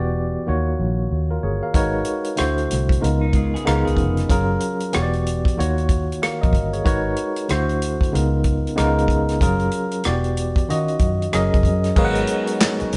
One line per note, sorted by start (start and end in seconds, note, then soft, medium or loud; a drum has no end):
0.00 0.36 E1 medium
0.00 0.47 E3 medium
0.00 0.47 B3 medium
0.00 0.47 F#4 medium
0.00 0.48 G4 medium
0.00 0.48 D5 medium
0.46 0.74 D#2 medium
0.46 1.50 D#3 medium
0.46 1.50 A#3 medium
0.46 1.11 F4 medium
0.46 1.11 F#4 medium
0.46 1.12 C#5 medium
0.80 1.05 A#1 medium
1.11 1.37 D#2 medium
1.31 1.43 F4 medium
1.31 1.42 A#4 medium
1.43 1.59 G1 medium
1.43 1.62 G#4 medium
1.43 1.62 C#5 medium
1.63 1.74 A#4 soft
1.63 1.93 F5 medium
1.74 2.01 G#1 medium
1.74 2.26 G#3 medium
1.74 2.26 D#4 medium
1.74 2.26 F#4 medium
1.74 2.26 A#4 medium
1.74 2.27 B4 medium
1.74 2.27 C#5 medium
1.74 kick medium
1.74 closed hi-hat medium
2.05 closed hi-hat medium
2.24 closed hi-hat soft
2.36 2.65 D2 medium
2.36 3.01 D3 medium
2.36 3.01 A3 medium
2.36 3.02 E4 medium
2.36 3.02 F#4 medium
2.36 3.03 C5 medium
2.36 cross-stick loud
2.36 closed hi-hat medium
2.58 closed hi-hat soft
2.71 2.97 C2 medium
2.71 cross-stick soft
2.71 closed hi-hat medium
2.89 kick medium
2.89 closed hi-hat soft
3.00 3.55 C#2 medium
3.00 3.55 C#3 medium
3.00 3.55 G#3 medium
3.00 3.56 B3 medium
3.00 3.56 D#4 medium
3.00 3.56 F4 medium
3.00 3.56 A#4 medium
3.00 closed hi-hat medium
3.21 3.33 D#4 medium
3.33 3.53 G#3 medium
3.33 3.53 F4 medium
3.33 kick medium
3.33 closed hi-hat medium
3.54 3.66 B3 medium
3.54 3.66 G#4 medium
3.54 closed hi-hat soft
3.65 3.83 C#2 medium
3.65 4.19 C#3 medium
3.65 4.20 G#3 medium
3.65 4.20 B3 medium
3.65 3.85 C#4 medium
3.65 4.20 D#4 medium
3.65 4.21 F4 medium
3.65 3.84 A#4 medium
3.65 4.21 A#4 medium
3.65 cross-stick loud
3.65 closed hi-hat medium
3.85 3.97 C#2 medium
3.85 4.28 B3 medium
3.85 4.27 G#4 medium
3.85 closed hi-hat soft
3.97 4.24 F1 medium
3.97 kick medium
3.97 closed hi-hat soft
4.17 cross-stick soft
4.17 closed hi-hat soft
4.28 4.56 F#1 medium
4.28 4.81 F#3 medium
4.28 4.81 C#4 medium
4.28 4.82 F4 medium
4.28 4.82 G#4 medium
4.28 4.82 A#4 medium
4.28 kick medium
4.28 closed hi-hat medium
4.60 closed hi-hat medium
4.80 closed hi-hat soft
4.93 5.47 E1 loud
4.93 5.57 E3 medium
4.93 5.58 B3 medium
4.93 5.58 F#4 medium
4.93 5.58 G4 medium
4.93 5.03 C#5 medium
4.93 cross-stick loud
4.93 closed hi-hat medium
5.02 5.62 D5 medium
5.13 closed hi-hat soft
5.27 closed hi-hat medium
5.45 kick medium
5.45 closed hi-hat soft
5.57 6.11 D#2 medium
5.57 6.61 D#3 medium
5.57 6.61 A#3 medium
5.57 6.62 F4 medium
5.57 6.62 F#4 medium
5.57 5.91 C#5 medium
5.57 closed hi-hat medium
5.78 closed hi-hat soft
5.89 kick medium
5.89 closed hi-hat medium
6.12 closed hi-hat soft
6.22 6.41 A#4 medium
6.22 6.40 F5 medium
6.22 cross-stick loud
6.22 closed hi-hat medium
6.41 6.53 A#1 medium
6.41 6.72 A#4 medium
6.41 6.72 D#5 medium
6.41 kick medium
6.41 closed hi-hat soft
6.53 6.80 G1 medium
6.53 kick medium
6.53 closed hi-hat medium
6.73 7.04 G#4 soft
6.73 6.86 C#5 medium
6.73 closed hi-hat soft
6.84 7.12 G#1 medium
6.84 7.36 G#3 medium
6.84 7.36 D#4 medium
6.84 7.37 F#4 medium
6.84 7.37 A#4 medium
6.84 7.37 B4 medium
6.84 7.38 C#5 medium
6.84 kick loud
6.84 closed hi-hat medium
7.17 closed hi-hat medium
7.36 closed hi-hat soft
7.49 8.02 D2 medium
7.49 8.13 D3 medium
7.49 8.13 A3 medium
7.49 8.13 E4 medium
7.49 8.14 F#4 medium
7.49 8.14 C5 medium
7.49 cross-stick loud
7.49 closed hi-hat medium
7.69 closed hi-hat soft
7.82 closed hi-hat medium
8.01 kick medium
8.01 closed hi-hat soft
8.12 8.66 C#2 medium
8.12 8.67 C#3 medium
8.12 8.67 G#3 medium
8.12 8.67 B3 medium
8.12 8.67 D#4 medium
8.12 8.68 F4 medium
8.12 8.68 A#4 medium
8.12 closed hi-hat medium
8.44 kick medium
8.44 closed hi-hat medium
8.67 closed hi-hat soft
8.76 9.43 C#2 medium
8.76 9.30 C#3 medium
8.76 9.30 G#3 medium
8.76 9.31 B3 medium
8.76 9.31 D#4 medium
8.76 9.31 F4 medium
8.76 9.31 A#4 medium
8.76 cross-stick loud
8.76 closed hi-hat medium
8.99 closed hi-hat soft
9.08 kick medium
9.08 closed hi-hat soft
9.29 cross-stick soft
9.29 closed hi-hat soft
9.40 9.67 F#1 medium
9.40 9.92 F#3 medium
9.40 9.92 C#4 medium
9.40 9.93 F4 medium
9.40 9.93 G#4 medium
9.40 9.93 A#4 medium
9.40 kick loud
9.40 closed hi-hat medium
9.59 closed hi-hat soft
9.71 closed hi-hat medium
9.91 closed hi-hat soft
10.04 10.58 E1 medium
10.04 10.68 E3 medium
10.04 10.68 B3 medium
10.04 10.69 F#4 medium
10.04 10.69 G4 medium
10.04 10.70 D5 medium
10.04 cross-stick loud
10.04 closed hi-hat medium
10.24 closed hi-hat soft
10.37 closed hi-hat medium
10.56 kick medium
10.56 closed hi-hat soft
10.68 11.22 D#3 medium
10.68 10.96 D#3 medium
10.68 11.23 C#4 medium
10.68 11.23 F4 medium
10.68 11.23 F#4 medium
10.68 11.23 D#5 medium
10.68 closed hi-hat medium
10.88 closed hi-hat soft
10.99 11.27 F#2 medium
10.99 kick medium
10.99 closed hi-hat medium
11.22 closed hi-hat soft
11.32 11.49 F#1 medium
11.32 11.86 F#3 medium
11.32 11.87 C#4 medium
11.32 11.87 G#4 medium
11.32 11.87 A#4 medium
11.32 11.87 D#5 medium
11.32 cross-stick loud
11.32 closed hi-hat medium
11.54 11.66 F#1 medium
11.54 kick medium
11.54 closed hi-hat soft
11.63 11.90 F#2 medium
11.63 kick medium
11.63 closed hi-hat soft
11.84 cross-stick soft
11.84 closed hi-hat soft
11.96 12.23 G#1 loud
11.96 12.97 F#3 medium
11.96 12.92 G#3 medium
11.96 12.97 G#3 medium
11.96 12.97 B3 medium
11.96 12.97 C#4 medium
11.96 12.97 D#4 medium
11.96 12.97 F#4 medium
11.96 12.92 G#4 medium
11.96 12.93 A#4 medium
11.96 12.93 B4 medium
11.96 12.93 C#5 medium
11.96 12.05 F5 medium
11.96 kick loud
11.96 crash loud
12.05 12.96 F#5 medium
12.15 closed hi-hat soft
12.27 closed hi-hat medium
12.47 closed hi-hat medium
12.61 snare loud
12.61 clap loud
12.80 muted fingered electric bass stroke soft
12.80 closed hi-hat soft
12.93 12.97 C#2 medium
12.93 closed hi-hat medium